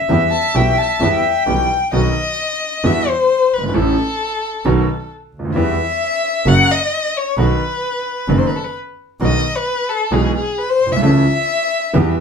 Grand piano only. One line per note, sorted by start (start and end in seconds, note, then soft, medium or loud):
0.09 0.29 E2 medium
0.09 0.29 E3 medium
0.09 0.29 G3 medium
0.09 0.29 B3 medium
0.09 0.29 G4 medium
0.55 0.74 B1 medium
0.55 0.74 B2 medium
0.55 0.74 E3 medium
0.55 0.74 G3 medium
0.55 0.74 B3 medium
0.55 0.74 G4 medium
1.01 1.20 E2 medium
1.01 1.20 E3 medium
1.01 1.20 G3 medium
1.01 1.20 B3 medium
1.01 1.20 G4 medium
1.46 1.67 B1 medium
1.46 1.66 B2 medium
1.46 1.66 E3 medium
1.46 1.67 G3 soft
1.46 1.67 B3 soft
1.46 1.67 G4 medium
1.93 2.12 B1 medium
1.93 2.12 B2 medium
1.93 2.12 D#3 medium
1.93 2.12 F#3 medium
1.93 2.13 B3 medium
1.93 2.13 F#4 medium
2.83 3.03 E2 medium
2.83 3.03 E3 medium
2.83 3.03 G3 medium
2.83 3.03 B3 medium
2.83 3.04 F#4 medium
3.58 3.64 F#1 soft
3.63 3.69 G1 medium
3.69 3.75 G#1 medium
3.74 3.94 A1 medium
3.74 3.94 A2 medium
3.74 3.94 E3 medium
3.74 3.94 A3 medium
3.74 3.94 C#4 medium
3.74 3.94 A4 medium
4.65 4.84 B1 medium
4.65 4.85 B2 medium
4.65 4.84 D#3 medium
4.65 4.84 F#3 medium
4.65 4.85 B3 medium
4.65 4.85 F#4 medium
5.39 5.45 C#2 medium
5.45 5.50 D2 medium
5.50 5.56 D#2 medium
5.55 5.75 E2 medium
5.55 5.75 E3 medium
5.55 5.75 G3 medium
5.55 5.75 B3 medium
5.55 5.75 G4 medium
6.47 6.65 F#2 medium
6.47 6.65 C#3 medium
6.47 6.66 F#3 medium
6.47 6.66 A#3 medium
6.47 6.66 F#4 medium
7.38 7.57 B1 medium
7.38 7.57 B2 medium
7.38 7.57 D#3 medium
7.38 7.57 F#3 medium
7.38 7.57 B3 medium
7.38 7.57 F#4 medium
8.29 8.48 F#1 medium
8.29 8.48 F#2 medium
8.29 8.48 D#3 medium
8.29 8.48 F#3 medium
8.29 8.48 B3 medium
8.29 8.48 F#4 medium
9.21 9.40 B1 medium
9.21 9.40 B2 medium
9.21 9.40 D#3 medium
9.21 9.40 F#3 medium
9.21 9.40 B3 medium
9.21 9.40 F#4 medium
10.12 10.31 B1 medium
10.12 10.31 B2 medium
10.12 10.31 E3 medium
10.12 10.31 G#3 medium
10.12 10.31 B3 medium
10.12 10.32 G#4 medium
10.86 10.92 A#1 soft
10.92 10.98 B1 medium
10.97 11.03 C2 medium
11.02 11.22 C#2 medium
11.02 11.22 C#3 medium
11.02 11.22 E3 medium
11.02 11.22 A3 medium
11.02 11.22 C#4 medium
11.02 11.22 A4 medium
11.93 12.13 E2 medium
11.93 12.13 E3 medium
11.93 12.13 G3 medium
11.93 12.13 B3 medium
11.93 12.13 G4 medium